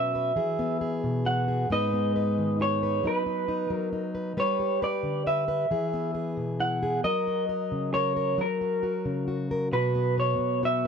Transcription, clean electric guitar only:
Already playing: E5
1.26 F#5
1.72 D#5
2.62 C#5
3.07 B4
3.70 A#4
4.40 C#5
4.84 D5
5.27 E5
6.60 F#5
7.04 D#5
7.94 C#5
8.41 A#4
9.73 B4
10.20 C#5
10.65 E5

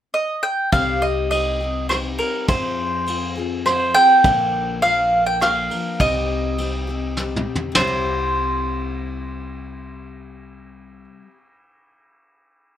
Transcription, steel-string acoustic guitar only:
0.72 C3 G3 C4 D#4 G4
1.31 G3 C4 D#4 G4
1.60 C4 D#4 G4
1.90 G3 C4 D#4 G4
2.48 F3 C4 F4 G#4
3.07 F3 C4 F4 G#4
3.36 C4 F4 G#4
3.65 F3 C4 F4 G#4
3.95 C4 F4 G#4
4.24 A#2 D3 F3 A#3 D4 A#4
4.82 F3 A#3 D4 A#4
5.40 F3 A#3 D4 A#4
5.70 F3 A#3 D4 A#4
6.00 C3 G3 C4 D#4 G4
6.58 G3 C4 D#4 G4
6.87 C4 D#4 G4
7.17 G3 C4 D#4 G4
7.72 C3
7.77 G3 C4
7.84 E4 G4

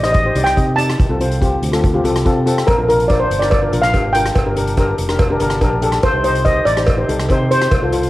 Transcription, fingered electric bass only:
Already playing: A1
0.35 C2
0.57 C3
0.99 C2
1.09 C2
1.62 D2
2.04 C2
2.26 C3
2.68 A#1
2.78 A#1
3.30 G1
3.72 A#1
3.94 G#1
4.35 G1
4.46 G1
4.99 F1
5.41 G1
5.61 A#1
6.03 C2
6.13 C2
6.66 A1
7.09 C2
7.29 C3
7.71 C2
7.81 C2

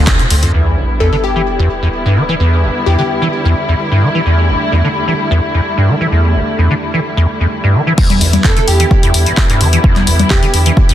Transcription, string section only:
Already playing: D3 A3 C4 F4
0.54 D3 G3 B3 E4
4.26 A3
7.98 D3 G3 B3 E4

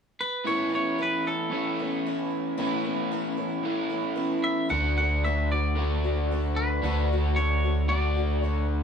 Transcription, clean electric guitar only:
0.21 B4
0.47 C#5
0.75 C#5
1.03 B4
1.27 A4
4.44 E5
4.70 F#5
4.98 F#5
5.24 E5
5.52 D5
6.56 B4
7.36 C#5
7.89 D5
8.42 C#5

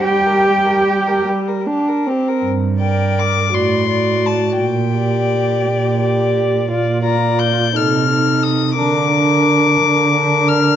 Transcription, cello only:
0.05 G4
2.45 G2
3.53 A2
4.61 A#2
5.68 A#2
6.71 A#2
7.76 C3
8.79 D3
9.81 D3

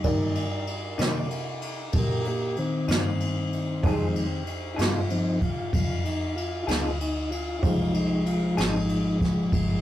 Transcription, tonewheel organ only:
Already playing: D#4
0.05 D#3 A#3
0.99 D#3 A#3 D5
1.92 G4 A4
1.97 A#4
2.27 A#3 G4
2.58 D#3 C4
3.84 F3 G#3 D#4
4.74 E4
4.78 F4
5.11 F3 C4 D#4
5.43 F4
5.74 F4
6.04 D#4
6.36 F4
6.63 E4
6.68 F4
7.01 D#4
7.31 F4
7.59 F3 E4
7.63 G#3 D#4 F4
7.93 D#4
8.26 F4
8.57 D#4

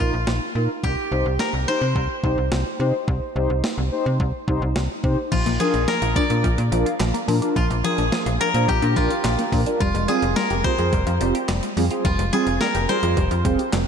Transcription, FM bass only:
0.00 A#1
0.13 A#1
0.28 A#1
0.55 A#2
0.84 C2
1.12 C2
1.26 C2
1.53 C2
1.82 C3
1.96 C2
2.24 C2
2.38 C2
2.52 C2
2.80 C3
3.08 C2
3.36 C2
3.50 C2
3.78 C2
4.06 C3
4.20 C2
4.48 C2
4.62 C2
4.76 C2
5.04 C3
5.32 A#1
5.46 A#1
5.74 A#1
6.02 A#1
6.30 A#2
6.44 A#1
6.58 A#2
6.72 A#1
7.00 A#1
7.28 A#2
7.56 A#1
7.70 A#1
7.98 A#1
8.26 A#1
8.54 A#2
8.68 A#1
8.82 A#2
8.96 A#1
9.24 A#1
9.52 A#2
9.81 F1
9.95 F1
10.23 F1
10.51 F1
10.79 F2
10.93 F1
11.07 F2
11.21 F1
11.49 F1
11.77 F2
12.05 F1
12.19 F1
12.47 F1
12.75 F1
13.03 F2
13.17 F1
13.31 F2
13.45 F1
13.73 F1

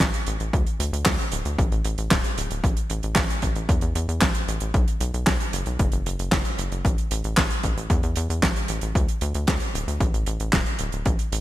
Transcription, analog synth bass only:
0.01 A1
0.27 A1
0.40 A1
0.53 D2
0.80 D2
0.93 D2
1.06 D2
1.32 D1
1.45 D2
1.58 A1
1.72 A1
1.85 A1
1.98 A1
2.11 D1
2.37 D1
2.51 D1
2.64 A1
2.90 A1
3.03 A1
3.16 A1
3.43 A1
3.56 A1
3.69 E2
3.82 E2
3.95 E2
4.08 E2
4.22 A1
4.48 A1
4.61 A1
4.74 B1
5.00 B1
5.14 B1
5.27 B1
5.53 F#1
5.66 B1
5.79 F#1
5.92 F#1
6.06 F#1
6.19 F#1
6.32 F#1
6.58 F#1
6.71 F#1
6.85 A1
7.11 A1
7.24 A1
7.37 A1
7.64 A1
7.77 A1
7.90 E2
8.03 E2
8.17 E2
8.30 E2
8.43 A1
8.69 A1
8.82 A1
8.95 D2
9.22 D2
9.35 D2
9.48 D2
9.74 D1
9.87 D2
10.00 A1
10.13 A1
10.27 A1
10.40 A1
10.53 D1
10.79 D1
10.93 D1
11.06 A1
11.32 A1

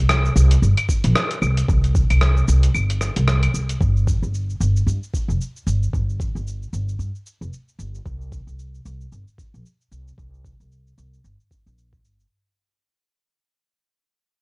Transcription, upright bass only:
Already playing: C2
0.36 C2
0.62 G1
1.04 A#1
1.42 C2
1.69 C2
2.10 C2
2.48 C2
2.75 G1
3.17 C2
3.54 C2
3.81 G1
4.22 G1
4.60 G1
4.86 G2
5.28 F1
5.67 G1
5.93 G1
6.35 G1
6.73 G1
6.99 G2
7.41 F1
7.79 G1
8.06 C2
8.47 C2
8.86 C2
9.12 G1
9.54 A#1
9.92 C2
10.18 C2
10.60 C2
10.98 C2
11.24 G1
11.66 A#1
12.04 G1

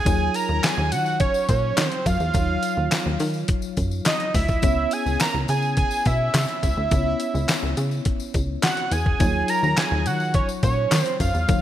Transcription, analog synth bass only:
0.06 D#2
0.49 D#2
0.78 D#2
0.92 D#3
1.49 A#2
1.77 D#3
2.06 F#2
2.20 E2
2.35 D#2
2.77 D#2
3.06 D#2
3.20 D#3
3.77 F#2
4.34 D2
4.63 C#2
5.06 C#2
5.34 C#2
5.49 C#3
6.06 B2
6.34 C#3
6.63 C#2
6.77 D2
6.92 C#2
7.34 C#2
7.63 C#2
7.77 C#3
8.34 C#2
8.91 E2
9.20 D#2
9.63 D#2
9.92 D#2
10.06 D#3
10.63 A#2
10.92 D#3
11.20 F#2
11.34 E2
11.49 D#2

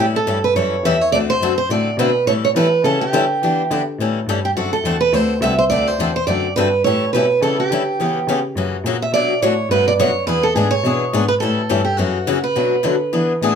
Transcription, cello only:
Already playing: A2
0.26 G2
0.55 F#2
0.84 E2
1.00 E2
1.12 D2
1.41 F#2
1.69 A2
1.86 A2
1.97 B2
2.26 A2
2.55 E3
2.84 C#3
3.13 D3
3.42 E3
3.70 D3
3.99 A2
4.27 G2
4.56 F#2
4.84 E2
5.13 D2
5.41 C2
5.70 D2
5.99 E2
6.27 F#2
6.57 G2
6.85 A2
7.13 B2
7.42 C#3
7.59 C#3
7.70 D3
7.99 E3
8.27 C#3
8.56 F#2
8.72 F#2
8.84 A#2
9.13 B2
9.42 A2
9.69 G2
9.98 F#2
10.27 E2
10.55 G#2
10.84 B2
11.13 G#2
11.42 A2
11.70 G2
11.99 F#2
12.27 C#3
12.56 B2
12.85 D3
13.13 E3
13.41 A2

